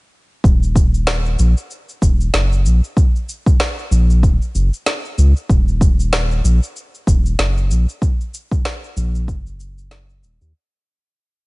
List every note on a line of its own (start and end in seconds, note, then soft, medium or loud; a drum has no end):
0.44 1.36 D#1 medium
0.44 kick loud
0.44 shaker soft
0.63 shaker soft
0.76 kick medium
0.76 shaker medium
0.94 shaker soft
1.07 snare loud
1.07 shaker soft
1.26 shaker soft
1.39 1.54 A#1 medium
1.39 shaker medium
1.57 shaker soft
1.71 shaker soft
1.89 shaker soft
2.02 2.29 D#1 medium
2.02 kick loud
2.02 shaker medium
2.21 shaker soft
2.34 2.67 F#1 medium
2.34 snare medium
2.34 shaker soft
2.52 shaker soft
2.65 2.80 A#1 medium
2.65 shaker medium
2.84 shaker soft
2.97 kick loud
2.97 shaker soft
3.16 shaker soft
3.29 shaker medium
3.46 kick loud
3.46 shaker soft
3.60 snare loud
3.60 shaker soft
3.79 shaker soft
3.91 4.25 A#1 medium
3.91 shaker medium
4.10 shaker soft
4.23 4.38 D#1 loud
4.23 kick loud
4.23 shaker soft
4.42 shaker soft
4.55 4.70 F#1 medium
4.55 shaker medium
4.74 shaker soft
4.86 snare loud
4.86 shaker soft
5.05 shaker soft
5.18 5.33 C#2 medium
5.18 shaker medium
5.37 shaker soft
5.49 6.41 D#1 loud
5.49 kick loud
5.49 shaker soft
5.68 shaker soft
5.81 kick loud
5.81 shaker medium
6.00 shaker soft
6.13 snare loud
6.13 shaker soft
6.31 shaker soft
6.44 6.59 A#1 loud
6.44 shaker medium
6.63 shaker soft
6.76 shaker soft
6.95 shaker soft
7.07 7.35 D#1 loud
7.07 kick loud
7.07 shaker medium
7.26 shaker soft
7.39 7.72 F#1 loud
7.39 snare medium
7.39 shaker soft
7.57 shaker soft
7.70 7.86 A#1 medium
7.70 shaker medium
7.89 shaker soft
8.02 kick loud
8.02 shaker soft
8.21 shaker soft
8.34 shaker medium
8.51 kick loud
8.51 shaker soft
8.65 snare medium
8.65 shaker soft
8.84 shaker soft
8.97 9.30 A#1 loud
8.97 shaker medium
9.15 shaker soft
9.28 10.24 F#1 medium
9.28 kick loud
9.28 shaker soft
9.47 shaker soft
9.60 shaker medium
9.78 shaker soft
9.91 snare medium
9.91 shaker soft
10.10 shaker soft
10.23 10.38 D#1 loud
10.23 shaker medium
10.41 10.52 D#2 medium
10.41 shaker soft